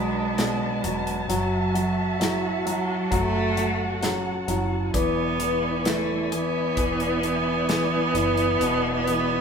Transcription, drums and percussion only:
0.38 snare loud
0.38 closed hi-hat medium
0.84 closed hi-hat medium
1.07 closed hi-hat soft
1.30 closed hi-hat medium
1.75 closed hi-hat medium
2.21 snare medium
2.21 closed hi-hat medium
2.67 closed hi-hat medium
3.12 kick medium
3.12 closed hi-hat medium
3.57 closed hi-hat medium
4.03 snare medium
4.03 closed hi-hat medium
4.48 closed hi-hat medium
4.94 kick medium
4.94 closed hi-hat medium
5.40 closed hi-hat medium
5.85 snare loud
5.85 closed hi-hat medium
6.32 closed hi-hat medium
6.77 kick medium
6.77 closed hi-hat medium
7.00 closed hi-hat soft
7.23 closed hi-hat medium
7.69 snare loud
7.69 closed hi-hat medium
8.15 closed hi-hat medium
8.37 closed hi-hat soft
8.61 closed hi-hat medium
9.07 closed hi-hat medium

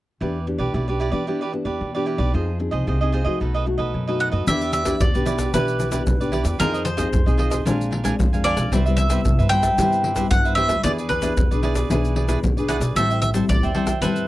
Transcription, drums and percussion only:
4.47 pandeiro medium
4.47 shaker medium
4.47 surdo medium
4.61 pandeiro soft
4.61 shaker soft
4.73 pandeiro medium
4.73 shaker medium
4.85 pandeiro medium
4.85 shaker medium
4.85 surdo soft
5.00 pandeiro medium
5.00 shaker medium
5.00 surdo medium
5.15 pandeiro soft
5.15 shaker soft
5.15 surdo soft
5.26 pandeiro medium
5.26 shaker medium
5.38 pandeiro medium
5.38 shaker medium
5.38 surdo soft
5.54 pandeiro medium
5.54 shaker medium
5.54 surdo medium
5.68 pandeiro soft
5.68 shaker soft
5.80 pandeiro medium
5.80 shaker medium
5.92 pandeiro medium
5.92 shaker medium
5.92 surdo soft
6.07 pandeiro medium
6.07 shaker medium
6.07 surdo loud
6.21 pandeiro soft
6.21 shaker soft
6.33 pandeiro medium
6.45 pandeiro medium
6.45 shaker medium
6.60 pandeiro medium
6.60 shaker medium
6.60 surdo medium
6.74 pandeiro soft
6.74 shaker soft
6.86 pandeiro medium
6.86 shaker medium
6.98 pandeiro medium
6.98 shaker medium
6.98 surdo soft
7.13 pandeiro medium
7.13 shaker medium
7.13 surdo loud
7.28 pandeiro soft
7.28 shaker soft
7.28 surdo soft
7.39 pandeiro medium
7.51 pandeiro medium
7.51 shaker medium
7.51 surdo soft
7.67 pandeiro medium
7.67 shaker medium
7.67 surdo medium
7.81 pandeiro soft
7.81 shaker soft
7.93 pandeiro medium
8.05 pandeiro medium
8.05 shaker medium
8.05 surdo soft
8.20 pandeiro medium
8.20 shaker medium
8.20 surdo medium
8.34 pandeiro soft
8.34 shaker soft
8.45 pandeiro medium
8.57 pandeiro medium
8.57 shaker medium
8.73 pandeiro medium
8.73 shaker medium
8.73 surdo medium
8.86 pandeiro soft
8.86 shaker soft
8.98 pandeiro medium
8.98 shaker medium
9.10 pandeiro medium
9.10 shaker medium
9.10 surdo soft
9.25 pandeiro medium
9.25 shaker medium
9.25 surdo medium
9.39 pandeiro soft
9.39 shaker soft
9.39 surdo soft
9.51 pandeiro medium
9.63 pandeiro medium
9.63 shaker medium
9.63 surdo soft
9.78 pandeiro medium
9.78 shaker medium
9.78 surdo medium
9.93 pandeiro soft
9.93 shaker soft
10.04 pandeiro medium
10.16 pandeiro medium
10.16 shaker medium
10.16 surdo soft
10.31 pandeiro medium
10.31 shaker medium
10.31 surdo loud
10.45 pandeiro soft
10.45 shaker soft
10.57 pandeiro medium
10.69 pandeiro medium
10.69 shaker medium
10.84 pandeiro medium
10.84 shaker medium
10.84 surdo medium
10.98 pandeiro soft
10.98 shaker soft
11.10 pandeiro medium
11.10 surdo soft
11.22 pandeiro medium
11.22 shaker medium
11.22 surdo soft
11.37 pandeiro medium
11.37 shaker medium
11.37 surdo medium
11.51 pandeiro soft
11.51 shaker soft
11.51 surdo soft
11.63 pandeiro soft
11.75 pandeiro medium
11.75 shaker medium
11.75 surdo soft
11.91 pandeiro medium
11.91 shaker medium
11.91 surdo medium
12.05 pandeiro soft
12.05 shaker soft
12.16 pandeiro medium
12.29 pandeiro medium
12.29 shaker medium
12.29 surdo soft
12.44 pandeiro medium
12.44 shaker medium
12.44 surdo loud
12.58 pandeiro soft
12.58 shaker soft
12.69 pandeiro medium
12.69 shaker medium
12.81 pandeiro medium
12.81 shaker medium
12.97 pandeiro medium
12.97 shaker medium
12.97 surdo medium
13.11 pandeiro soft
13.11 shaker soft
13.22 pandeiro medium
13.22 shaker medium
13.22 surdo soft
13.34 pandeiro medium
13.34 shaker medium
13.34 surdo soft
13.49 pandeiro medium
13.49 shaker medium
13.49 surdo loud
13.63 pandeiro soft
13.63 shaker soft
13.63 surdo soft
13.75 pandeiro medium
13.87 pandeiro medium
13.87 shaker medium
13.87 surdo soft
14.02 pandeiro medium
14.02 shaker medium
14.02 surdo medium
14.16 pandeiro soft
14.16 shaker soft

